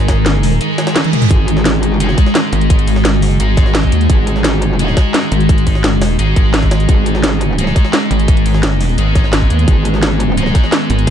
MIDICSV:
0, 0, Header, 1, 7, 480
1, 0, Start_track
1, 0, Key_signature, 5, "minor"
1, 0, Tempo, 348837
1, 1796, Time_signature, 4, 2, 24, 8
1, 15276, End_track
2, 0, Start_track
2, 0, Title_t, "Distorted electric guitar"
2, 0, Program_c, 0, 30
2, 0, Note_on_c, 0, 56, 79
2, 0, Note_on_c, 0, 63, 64
2, 0, Note_on_c, 0, 68, 79
2, 808, Note_off_c, 0, 56, 0
2, 808, Note_off_c, 0, 63, 0
2, 808, Note_off_c, 0, 68, 0
2, 834, Note_on_c, 0, 56, 79
2, 838, Note_on_c, 0, 63, 64
2, 844, Note_on_c, 0, 68, 82
2, 2727, Note_off_c, 0, 68, 0
2, 2728, Note_off_c, 0, 56, 0
2, 2728, Note_off_c, 0, 63, 0
2, 2750, Note_on_c, 0, 56, 78
2, 2758, Note_on_c, 0, 63, 72
2, 2766, Note_on_c, 0, 68, 82
2, 4647, Note_off_c, 0, 56, 0
2, 4647, Note_off_c, 0, 63, 0
2, 4647, Note_off_c, 0, 68, 0
2, 4673, Note_on_c, 0, 56, 80
2, 4679, Note_on_c, 0, 63, 70
2, 4686, Note_on_c, 0, 68, 83
2, 6568, Note_off_c, 0, 56, 0
2, 6568, Note_off_c, 0, 63, 0
2, 6568, Note_off_c, 0, 68, 0
2, 6592, Note_on_c, 0, 56, 80
2, 6601, Note_on_c, 0, 63, 71
2, 6607, Note_on_c, 0, 68, 78
2, 8487, Note_off_c, 0, 56, 0
2, 8487, Note_off_c, 0, 63, 0
2, 8487, Note_off_c, 0, 68, 0
2, 8512, Note_on_c, 0, 56, 85
2, 8518, Note_on_c, 0, 63, 62
2, 8526, Note_on_c, 0, 68, 80
2, 10408, Note_off_c, 0, 56, 0
2, 10408, Note_off_c, 0, 63, 0
2, 10408, Note_off_c, 0, 68, 0
2, 10432, Note_on_c, 0, 56, 74
2, 10440, Note_on_c, 0, 63, 71
2, 10447, Note_on_c, 0, 68, 84
2, 12328, Note_off_c, 0, 56, 0
2, 12328, Note_off_c, 0, 63, 0
2, 12328, Note_off_c, 0, 68, 0
2, 12351, Note_on_c, 0, 56, 84
2, 12360, Note_on_c, 0, 63, 72
2, 12368, Note_on_c, 0, 68, 78
2, 14247, Note_off_c, 0, 56, 0
2, 14247, Note_off_c, 0, 63, 0
2, 14247, Note_off_c, 0, 68, 0
2, 14272, Note_on_c, 0, 56, 80
2, 14278, Note_on_c, 0, 63, 66
2, 14284, Note_on_c, 0, 68, 77
2, 15276, Note_off_c, 0, 56, 0
2, 15276, Note_off_c, 0, 63, 0
2, 15276, Note_off_c, 0, 68, 0
2, 15276, End_track
3, 0, Start_track
3, 0, Title_t, "Synth drone"
3, 0, Program_c, 1, 95
3, 0, Note_on_c, 1, 51, 83
3, 0, Note_on_c, 1, 56, 75
3, 0, Note_on_c, 1, 70, 95
3, 1765, Note_off_c, 1, 70, 0
3, 1795, Note_on_c, 1, 66, 89
3, 9445, Note_off_c, 1, 66, 0
3, 9476, Note_on_c, 1, 59, 92
3, 15276, Note_off_c, 1, 51, 0
3, 15276, Note_off_c, 1, 56, 0
3, 15276, Note_off_c, 1, 59, 0
3, 15276, End_track
4, 0, Start_track
4, 0, Title_t, "Wobble bass"
4, 0, Program_c, 2, 39
4, 0, Note_on_c, 2, 32, 102
4, 817, Note_off_c, 2, 32, 0
4, 3476, Note_on_c, 2, 32, 102
4, 4315, Note_off_c, 2, 32, 0
4, 4315, Note_on_c, 2, 31, 102
4, 4657, Note_off_c, 2, 31, 0
4, 4676, Note_on_c, 2, 32, 94
4, 5377, Note_off_c, 2, 32, 0
4, 5396, Note_on_c, 2, 39, 104
4, 5617, Note_off_c, 2, 39, 0
4, 7317, Note_on_c, 2, 32, 104
4, 8497, Note_off_c, 2, 32, 0
4, 8516, Note_on_c, 2, 32, 98
4, 8737, Note_off_c, 2, 32, 0
4, 8756, Note_on_c, 2, 32, 99
4, 9457, Note_off_c, 2, 32, 0
4, 11156, Note_on_c, 2, 32, 105
4, 12337, Note_off_c, 2, 32, 0
4, 12356, Note_on_c, 2, 32, 98
4, 13057, Note_off_c, 2, 32, 0
4, 13076, Note_on_c, 2, 39, 101
4, 13297, Note_off_c, 2, 39, 0
4, 14996, Note_on_c, 2, 32, 102
4, 15276, Note_off_c, 2, 32, 0
4, 15276, End_track
5, 0, Start_track
5, 0, Title_t, "Wobble bass"
5, 0, Program_c, 3, 39
5, 1796, Note_on_c, 3, 32, 94
5, 2635, Note_off_c, 3, 32, 0
5, 2635, Note_on_c, 3, 31, 94
5, 2977, Note_off_c, 3, 31, 0
5, 5636, Note_on_c, 3, 32, 97
5, 6817, Note_off_c, 3, 32, 0
5, 9477, Note_on_c, 3, 32, 94
5, 10657, Note_off_c, 3, 32, 0
5, 13316, Note_on_c, 3, 32, 98
5, 14497, Note_off_c, 3, 32, 0
5, 15276, End_track
6, 0, Start_track
6, 0, Title_t, "Reverse cymbal"
6, 0, Program_c, 4, 119
6, 836, Note_on_c, 4, 60, 61
6, 1796, Note_off_c, 4, 60, 0
6, 15276, End_track
7, 0, Start_track
7, 0, Title_t, "Drums"
7, 116, Note_on_c, 9, 36, 60
7, 116, Note_on_c, 9, 38, 102
7, 116, Note_on_c, 9, 42, 79
7, 117, Note_off_c, 9, 42, 0
7, 117, Note_on_c, 9, 42, 71
7, 254, Note_off_c, 9, 36, 0
7, 254, Note_off_c, 9, 38, 0
7, 254, Note_off_c, 9, 42, 0
7, 356, Note_on_c, 9, 38, 116
7, 356, Note_on_c, 9, 42, 97
7, 494, Note_off_c, 9, 38, 0
7, 494, Note_off_c, 9, 42, 0
7, 596, Note_on_c, 9, 42, 65
7, 596, Note_on_c, 9, 46, 82
7, 716, Note_off_c, 9, 42, 0
7, 716, Note_on_c, 9, 42, 47
7, 734, Note_off_c, 9, 46, 0
7, 836, Note_off_c, 9, 42, 0
7, 836, Note_on_c, 9, 42, 90
7, 837, Note_off_c, 9, 42, 0
7, 837, Note_on_c, 9, 42, 93
7, 974, Note_off_c, 9, 42, 0
7, 1076, Note_on_c, 9, 38, 109
7, 1076, Note_on_c, 9, 42, 83
7, 1077, Note_off_c, 9, 42, 0
7, 1077, Note_on_c, 9, 42, 65
7, 1196, Note_off_c, 9, 38, 0
7, 1196, Note_off_c, 9, 42, 0
7, 1196, Note_on_c, 9, 38, 110
7, 1196, Note_on_c, 9, 42, 80
7, 1316, Note_off_c, 9, 38, 0
7, 1316, Note_off_c, 9, 42, 0
7, 1316, Note_on_c, 9, 38, 107
7, 1316, Note_on_c, 9, 42, 77
7, 1317, Note_off_c, 9, 38, 0
7, 1317, Note_off_c, 9, 42, 0
7, 1317, Note_on_c, 9, 38, 111
7, 1317, Note_on_c, 9, 42, 93
7, 1317, Note_on_c, 9, 48, 62
7, 1437, Note_off_c, 9, 42, 0
7, 1437, Note_off_c, 9, 48, 0
7, 1437, Note_on_c, 9, 42, 39
7, 1437, Note_on_c, 9, 48, 63
7, 1454, Note_off_c, 9, 38, 0
7, 1556, Note_off_c, 9, 42, 0
7, 1556, Note_on_c, 9, 42, 59
7, 1557, Note_off_c, 9, 42, 0
7, 1557, Note_on_c, 9, 42, 66
7, 1557, Note_on_c, 9, 47, 89
7, 1574, Note_off_c, 9, 48, 0
7, 1676, Note_off_c, 9, 42, 0
7, 1676, Note_on_c, 9, 42, 84
7, 1677, Note_off_c, 9, 42, 0
7, 1677, Note_on_c, 9, 42, 40
7, 1677, Note_on_c, 9, 45, 84
7, 1695, Note_off_c, 9, 47, 0
7, 1796, Note_off_c, 9, 42, 0
7, 1796, Note_on_c, 9, 36, 121
7, 1796, Note_on_c, 9, 42, 88
7, 1797, Note_off_c, 9, 42, 0
7, 1797, Note_on_c, 9, 42, 100
7, 1815, Note_off_c, 9, 45, 0
7, 1934, Note_off_c, 9, 36, 0
7, 1935, Note_off_c, 9, 42, 0
7, 2036, Note_on_c, 9, 42, 71
7, 2037, Note_off_c, 9, 42, 0
7, 2037, Note_on_c, 9, 42, 72
7, 2156, Note_on_c, 9, 38, 50
7, 2174, Note_off_c, 9, 42, 0
7, 2276, Note_off_c, 9, 38, 0
7, 2276, Note_on_c, 9, 38, 110
7, 2276, Note_on_c, 9, 42, 87
7, 2277, Note_off_c, 9, 38, 0
7, 2277, Note_off_c, 9, 42, 0
7, 2277, Note_on_c, 9, 38, 127
7, 2277, Note_on_c, 9, 42, 97
7, 2414, Note_off_c, 9, 38, 0
7, 2414, Note_off_c, 9, 42, 0
7, 2516, Note_on_c, 9, 42, 72
7, 2517, Note_off_c, 9, 42, 0
7, 2517, Note_on_c, 9, 42, 70
7, 2655, Note_off_c, 9, 42, 0
7, 2755, Note_on_c, 9, 42, 89
7, 2756, Note_off_c, 9, 42, 0
7, 2756, Note_on_c, 9, 42, 98
7, 2876, Note_on_c, 9, 38, 45
7, 2894, Note_off_c, 9, 42, 0
7, 2996, Note_off_c, 9, 38, 0
7, 2996, Note_on_c, 9, 36, 108
7, 2996, Note_on_c, 9, 38, 45
7, 2996, Note_on_c, 9, 42, 68
7, 3116, Note_off_c, 9, 38, 0
7, 3116, Note_on_c, 9, 38, 53
7, 3134, Note_off_c, 9, 36, 0
7, 3134, Note_off_c, 9, 42, 0
7, 3236, Note_off_c, 9, 38, 0
7, 3236, Note_on_c, 9, 38, 116
7, 3236, Note_on_c, 9, 42, 96
7, 3373, Note_off_c, 9, 38, 0
7, 3373, Note_off_c, 9, 42, 0
7, 3476, Note_on_c, 9, 42, 68
7, 3596, Note_off_c, 9, 42, 0
7, 3596, Note_on_c, 9, 42, 41
7, 3716, Note_off_c, 9, 42, 0
7, 3716, Note_on_c, 9, 36, 127
7, 3716, Note_on_c, 9, 42, 100
7, 3836, Note_off_c, 9, 42, 0
7, 3836, Note_on_c, 9, 42, 39
7, 3854, Note_off_c, 9, 36, 0
7, 3956, Note_off_c, 9, 42, 0
7, 3956, Note_on_c, 9, 42, 73
7, 3956, Note_on_c, 9, 46, 85
7, 4076, Note_on_c, 9, 38, 55
7, 4094, Note_off_c, 9, 42, 0
7, 4094, Note_off_c, 9, 46, 0
7, 4196, Note_off_c, 9, 38, 0
7, 4196, Note_on_c, 9, 38, 117
7, 4196, Note_on_c, 9, 42, 86
7, 4334, Note_off_c, 9, 38, 0
7, 4334, Note_off_c, 9, 42, 0
7, 4436, Note_on_c, 9, 42, 74
7, 4437, Note_on_c, 9, 46, 77
7, 4556, Note_off_c, 9, 42, 0
7, 4556, Note_on_c, 9, 42, 45
7, 4574, Note_off_c, 9, 46, 0
7, 4676, Note_off_c, 9, 42, 0
7, 4676, Note_on_c, 9, 42, 103
7, 4814, Note_off_c, 9, 42, 0
7, 4916, Note_on_c, 9, 36, 112
7, 4916, Note_on_c, 9, 38, 51
7, 4916, Note_on_c, 9, 42, 68
7, 4917, Note_off_c, 9, 42, 0
7, 4917, Note_on_c, 9, 42, 69
7, 5036, Note_off_c, 9, 38, 0
7, 5036, Note_on_c, 9, 38, 45
7, 5054, Note_off_c, 9, 36, 0
7, 5054, Note_off_c, 9, 42, 0
7, 5157, Note_off_c, 9, 38, 0
7, 5157, Note_on_c, 9, 38, 127
7, 5157, Note_on_c, 9, 42, 97
7, 5276, Note_on_c, 9, 36, 67
7, 5294, Note_off_c, 9, 38, 0
7, 5294, Note_off_c, 9, 42, 0
7, 5396, Note_on_c, 9, 42, 68
7, 5397, Note_off_c, 9, 42, 0
7, 5397, Note_on_c, 9, 42, 69
7, 5414, Note_off_c, 9, 36, 0
7, 5516, Note_off_c, 9, 42, 0
7, 5516, Note_on_c, 9, 42, 41
7, 5636, Note_off_c, 9, 42, 0
7, 5636, Note_on_c, 9, 36, 124
7, 5636, Note_on_c, 9, 42, 92
7, 5774, Note_off_c, 9, 36, 0
7, 5774, Note_off_c, 9, 42, 0
7, 5876, Note_on_c, 9, 42, 70
7, 5997, Note_on_c, 9, 38, 50
7, 6014, Note_off_c, 9, 42, 0
7, 6115, Note_off_c, 9, 38, 0
7, 6115, Note_on_c, 9, 38, 127
7, 6115, Note_on_c, 9, 42, 98
7, 6116, Note_off_c, 9, 38, 0
7, 6116, Note_off_c, 9, 42, 0
7, 6116, Note_on_c, 9, 38, 110
7, 6116, Note_on_c, 9, 42, 89
7, 6254, Note_off_c, 9, 38, 0
7, 6254, Note_off_c, 9, 42, 0
7, 6356, Note_on_c, 9, 42, 70
7, 6494, Note_off_c, 9, 42, 0
7, 6596, Note_on_c, 9, 42, 90
7, 6717, Note_on_c, 9, 38, 47
7, 6734, Note_off_c, 9, 42, 0
7, 6836, Note_on_c, 9, 42, 68
7, 6837, Note_off_c, 9, 38, 0
7, 6837, Note_off_c, 9, 42, 0
7, 6837, Note_on_c, 9, 36, 110
7, 6837, Note_on_c, 9, 38, 107
7, 6837, Note_on_c, 9, 42, 80
7, 6974, Note_off_c, 9, 36, 0
7, 6975, Note_off_c, 9, 38, 0
7, 6975, Note_off_c, 9, 42, 0
7, 7076, Note_on_c, 9, 38, 127
7, 7076, Note_on_c, 9, 42, 92
7, 7214, Note_off_c, 9, 38, 0
7, 7214, Note_off_c, 9, 42, 0
7, 7316, Note_on_c, 9, 42, 70
7, 7317, Note_off_c, 9, 42, 0
7, 7317, Note_on_c, 9, 42, 68
7, 7437, Note_off_c, 9, 42, 0
7, 7437, Note_on_c, 9, 42, 39
7, 7557, Note_off_c, 9, 42, 0
7, 7557, Note_on_c, 9, 36, 125
7, 7557, Note_on_c, 9, 42, 88
7, 7677, Note_off_c, 9, 42, 0
7, 7677, Note_on_c, 9, 42, 37
7, 7694, Note_off_c, 9, 36, 0
7, 7797, Note_off_c, 9, 42, 0
7, 7797, Note_on_c, 9, 36, 62
7, 7797, Note_on_c, 9, 42, 68
7, 7797, Note_on_c, 9, 46, 82
7, 7917, Note_on_c, 9, 38, 55
7, 7934, Note_off_c, 9, 36, 0
7, 7934, Note_off_c, 9, 46, 0
7, 7935, Note_off_c, 9, 42, 0
7, 8037, Note_off_c, 9, 38, 0
7, 8037, Note_on_c, 9, 38, 126
7, 8037, Note_on_c, 9, 42, 98
7, 8175, Note_off_c, 9, 38, 0
7, 8175, Note_off_c, 9, 42, 0
7, 8277, Note_on_c, 9, 38, 110
7, 8277, Note_on_c, 9, 42, 86
7, 8277, Note_on_c, 9, 46, 77
7, 8415, Note_off_c, 9, 38, 0
7, 8415, Note_off_c, 9, 42, 0
7, 8415, Note_off_c, 9, 46, 0
7, 8517, Note_on_c, 9, 42, 64
7, 8655, Note_off_c, 9, 42, 0
7, 8757, Note_on_c, 9, 36, 115
7, 8757, Note_on_c, 9, 42, 83
7, 8894, Note_off_c, 9, 36, 0
7, 8894, Note_off_c, 9, 42, 0
7, 8997, Note_on_c, 9, 38, 122
7, 8997, Note_on_c, 9, 42, 87
7, 9117, Note_off_c, 9, 38, 0
7, 9117, Note_on_c, 9, 36, 66
7, 9117, Note_on_c, 9, 38, 44
7, 9134, Note_off_c, 9, 42, 0
7, 9237, Note_off_c, 9, 38, 0
7, 9237, Note_on_c, 9, 38, 105
7, 9237, Note_on_c, 9, 42, 79
7, 9254, Note_off_c, 9, 36, 0
7, 9357, Note_off_c, 9, 42, 0
7, 9357, Note_on_c, 9, 42, 37
7, 9374, Note_off_c, 9, 38, 0
7, 9477, Note_off_c, 9, 42, 0
7, 9477, Note_on_c, 9, 36, 117
7, 9477, Note_on_c, 9, 42, 87
7, 9614, Note_off_c, 9, 36, 0
7, 9615, Note_off_c, 9, 42, 0
7, 9716, Note_on_c, 9, 42, 67
7, 9717, Note_off_c, 9, 42, 0
7, 9717, Note_on_c, 9, 42, 65
7, 9836, Note_on_c, 9, 38, 50
7, 9854, Note_off_c, 9, 42, 0
7, 9956, Note_off_c, 9, 38, 0
7, 9956, Note_on_c, 9, 38, 117
7, 9956, Note_on_c, 9, 42, 85
7, 9957, Note_off_c, 9, 38, 0
7, 9957, Note_off_c, 9, 42, 0
7, 9957, Note_on_c, 9, 38, 123
7, 9957, Note_on_c, 9, 42, 93
7, 10095, Note_off_c, 9, 38, 0
7, 10095, Note_off_c, 9, 42, 0
7, 10196, Note_on_c, 9, 42, 71
7, 10197, Note_off_c, 9, 42, 0
7, 10197, Note_on_c, 9, 42, 64
7, 10334, Note_off_c, 9, 42, 0
7, 10436, Note_on_c, 9, 42, 95
7, 10437, Note_off_c, 9, 42, 0
7, 10437, Note_on_c, 9, 42, 90
7, 10556, Note_on_c, 9, 38, 48
7, 10575, Note_off_c, 9, 42, 0
7, 10676, Note_off_c, 9, 38, 0
7, 10676, Note_on_c, 9, 36, 107
7, 10676, Note_on_c, 9, 38, 45
7, 10676, Note_on_c, 9, 42, 71
7, 10677, Note_off_c, 9, 42, 0
7, 10677, Note_on_c, 9, 42, 62
7, 10796, Note_off_c, 9, 38, 0
7, 10796, Note_on_c, 9, 38, 49
7, 10814, Note_off_c, 9, 36, 0
7, 10814, Note_off_c, 9, 42, 0
7, 10916, Note_off_c, 9, 38, 0
7, 10916, Note_on_c, 9, 38, 114
7, 10916, Note_on_c, 9, 42, 89
7, 10917, Note_off_c, 9, 38, 0
7, 10917, Note_off_c, 9, 42, 0
7, 10917, Note_on_c, 9, 38, 118
7, 10917, Note_on_c, 9, 42, 88
7, 11054, Note_off_c, 9, 38, 0
7, 11054, Note_off_c, 9, 42, 0
7, 11156, Note_on_c, 9, 42, 68
7, 11276, Note_off_c, 9, 42, 0
7, 11276, Note_on_c, 9, 42, 37
7, 11396, Note_off_c, 9, 42, 0
7, 11396, Note_on_c, 9, 36, 121
7, 11396, Note_on_c, 9, 42, 89
7, 11397, Note_off_c, 9, 42, 0
7, 11397, Note_on_c, 9, 42, 92
7, 11517, Note_off_c, 9, 42, 0
7, 11517, Note_on_c, 9, 42, 34
7, 11534, Note_off_c, 9, 36, 0
7, 11636, Note_on_c, 9, 46, 84
7, 11637, Note_off_c, 9, 42, 0
7, 11637, Note_on_c, 9, 42, 69
7, 11756, Note_on_c, 9, 38, 53
7, 11774, Note_off_c, 9, 46, 0
7, 11775, Note_off_c, 9, 42, 0
7, 11876, Note_off_c, 9, 38, 0
7, 11876, Note_on_c, 9, 38, 113
7, 11876, Note_on_c, 9, 42, 91
7, 11877, Note_off_c, 9, 38, 0
7, 11877, Note_off_c, 9, 42, 0
7, 11877, Note_on_c, 9, 38, 115
7, 11877, Note_on_c, 9, 42, 92
7, 12014, Note_off_c, 9, 38, 0
7, 12014, Note_off_c, 9, 42, 0
7, 12116, Note_on_c, 9, 42, 73
7, 12117, Note_on_c, 9, 46, 84
7, 12237, Note_off_c, 9, 42, 0
7, 12237, Note_on_c, 9, 42, 44
7, 12254, Note_off_c, 9, 46, 0
7, 12356, Note_off_c, 9, 42, 0
7, 12356, Note_on_c, 9, 42, 87
7, 12357, Note_off_c, 9, 42, 0
7, 12357, Note_on_c, 9, 42, 92
7, 12494, Note_off_c, 9, 42, 0
7, 12596, Note_on_c, 9, 36, 105
7, 12596, Note_on_c, 9, 42, 60
7, 12597, Note_off_c, 9, 42, 0
7, 12597, Note_on_c, 9, 38, 51
7, 12597, Note_on_c, 9, 42, 74
7, 12717, Note_off_c, 9, 38, 0
7, 12717, Note_on_c, 9, 38, 45
7, 12734, Note_off_c, 9, 36, 0
7, 12734, Note_off_c, 9, 42, 0
7, 12836, Note_off_c, 9, 38, 0
7, 12836, Note_on_c, 9, 38, 111
7, 12836, Note_on_c, 9, 42, 86
7, 12837, Note_off_c, 9, 38, 0
7, 12837, Note_off_c, 9, 42, 0
7, 12837, Note_on_c, 9, 38, 116
7, 12837, Note_on_c, 9, 42, 89
7, 12956, Note_on_c, 9, 36, 62
7, 12974, Note_off_c, 9, 38, 0
7, 12974, Note_off_c, 9, 42, 0
7, 13076, Note_on_c, 9, 42, 69
7, 13094, Note_off_c, 9, 36, 0
7, 13197, Note_off_c, 9, 42, 0
7, 13197, Note_on_c, 9, 42, 36
7, 13316, Note_off_c, 9, 42, 0
7, 13316, Note_on_c, 9, 36, 119
7, 13316, Note_on_c, 9, 42, 91
7, 13317, Note_off_c, 9, 42, 0
7, 13317, Note_on_c, 9, 42, 85
7, 13454, Note_off_c, 9, 36, 0
7, 13454, Note_off_c, 9, 42, 0
7, 13556, Note_on_c, 9, 42, 69
7, 13557, Note_off_c, 9, 42, 0
7, 13557, Note_on_c, 9, 42, 70
7, 13676, Note_on_c, 9, 38, 51
7, 13694, Note_off_c, 9, 42, 0
7, 13796, Note_off_c, 9, 38, 0
7, 13796, Note_on_c, 9, 38, 114
7, 13796, Note_on_c, 9, 42, 93
7, 13934, Note_off_c, 9, 38, 0
7, 13934, Note_off_c, 9, 42, 0
7, 14036, Note_on_c, 9, 42, 67
7, 14037, Note_off_c, 9, 42, 0
7, 14037, Note_on_c, 9, 42, 72
7, 14174, Note_off_c, 9, 42, 0
7, 14276, Note_on_c, 9, 42, 87
7, 14396, Note_on_c, 9, 38, 48
7, 14414, Note_off_c, 9, 42, 0
7, 14516, Note_off_c, 9, 38, 0
7, 14516, Note_on_c, 9, 36, 102
7, 14516, Note_on_c, 9, 38, 45
7, 14516, Note_on_c, 9, 42, 61
7, 14636, Note_off_c, 9, 38, 0
7, 14636, Note_on_c, 9, 38, 51
7, 14654, Note_off_c, 9, 36, 0
7, 14654, Note_off_c, 9, 42, 0
7, 14756, Note_off_c, 9, 38, 0
7, 14756, Note_on_c, 9, 38, 120
7, 14756, Note_on_c, 9, 42, 88
7, 14893, Note_off_c, 9, 38, 0
7, 14893, Note_off_c, 9, 42, 0
7, 14996, Note_on_c, 9, 42, 69
7, 15116, Note_off_c, 9, 42, 0
7, 15116, Note_on_c, 9, 42, 38
7, 15254, Note_off_c, 9, 42, 0
7, 15276, End_track
0, 0, End_of_file